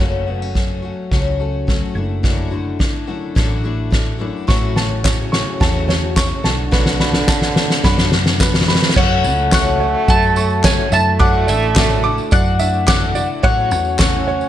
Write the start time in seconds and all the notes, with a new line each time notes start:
0.00 F#1 F#2 C#3 F#3 A3 C#4 F#4
0.26 F#3 A3 B3 C#4 F#4
0.42 C#4
0.55 F#3 A3 C#4 F#4, kick, snare
0.82 F#3 A3 C#4 F#4
1.11 C#2 F#2 C#3 F#3 A3 C#4 F#4, kick, snare
1.40 F#3 A3 C#4 F#4 A4
1.67 F#3 A3 C#4 F#4, kick, snare
1.95 F#1 F#2 A3 D4 E4 F#4
2.23 F#2 E3 A3 D4 E4 F#4, kick, snare
2.51 D3 A3 D4 E4 F#4
2.79 A3 D4 E4 F#4, kick, snare
3.07 F#2 A3 D4 E4 F#4
3.35 A1 F#2 E3 A3 D4 E4 F#4, kick, snare
3.64 A3 D4 E4 F#4
3.90 A3 D4 E4 F#4, kick, snare
4.19 F#2 A3 D4 E4 F#4
4.47 A1 A2 C#3 E3 F#3 A3 C#4 F#4 C#6, kick, snare
4.76 F#3 A3 C#4 F#4 A5, snare
5.04 F#3 A3 C#4 F#4 C#5, kick, snare, clap, tambourine
5.32 F#3 A3 C#4 F#4 C#6, snare
5.60 E2 A2 E3 F#3 A3 C#4 F#4 A5, kick, snare
5.88 F#3 A3 C#4 F#4 C#5, snare
6.16 F#3 A3 C#4 F#4 C#6, kick, snare, clap, tambourine
6.44 B1 D3 A3 D4 F#4 A5, snare
6.71 B2 F#3 A3 D4 F#4 B4, kick, snare
6.86 snare
6.99 A3 D4 F#4 B5, snare
7.13 snare
7.28 F#3 A3 D4 F#4 A5, kick, snare, clap, tambourine
7.41 snare
7.56 A3 D4 F#4, snare
7.70 snare
7.83 F#2 B2 F#3 A3 D4 F#4 B5, kick, snare
7.98 snare
8.12 A3 D4 F#4, snare
8.26 snare
8.40 F#3 A3 D4 F#4 B4, kick, snare, clap, tambourine
8.54 snare
8.61 snare
8.68 A3 D4 F#4 B5, snare
8.75 snare
8.82 snare
8.89 snare
8.96 F#2 C#3 F#3 A3 C#4 F#4 C#5 F#5, kick, crash
9.24 C#2 F#3 A3 C#4 F#4, tambourine
9.38 tambourine
9.52 F#2 C#3 F#3 A3 C#4 F#4 F#5 C#6, kick, snare, clap, tambourine
9.80 F#3 A3 C#4 F#4 C#5
10.08 F#2 F#3 A3 C#4 F#4 F#5 A5, kick, tambourine
10.22 tambourine
10.36 F#3 A3 C#4 F#4 C#6, tambourine
10.50 tambourine
10.64 F#2 C#3 F#3 A3 C#4 F#4 C#5 G#5, kick, snare, clap, tambourine
10.91 F#2 A3 D4 E4 F#4 E5 A5, tambourine
11.19 F#2 E3 A3 D4 E4 F#4 F#5 D6, kick
11.47 A1 A3 D4 E4 F#4 D5 E5, tambourine
11.63 tambourine
11.75 F#2 E3 A3 D4 E4 F#4, kick, snare, clap, tambourine
11.90 tambourine
12.03 A3 D4 E4 F#4 D6
12.18 tambourine
12.31 F#2 A3 D4 E4 F#4 D5 F#5, kick, tambourine
12.46 tambourine
12.59 A3 D4 E4 F#4 E5, tambourine
12.74 tambourine
12.86 F#2 E3 A3 D4 E4 F#4 F#5 D6, kick, snare, clap, tambourine
13.15 A3 D4 E4 F#4 D5, tambourine
13.42 A1 A2 E3 F#3 A3 C#4 F#4 C#5 F#5, kick
13.71 E2 F#3 A3 C#4 F#4, tambourine
13.85 tambourine
13.99 A2 E3 F#3 A3 C#4 F#4 F#5 C#6, kick, snare, clap, tambourine
14.27 F#3 A3 C#4 F#4 C#5
14.41 tambourine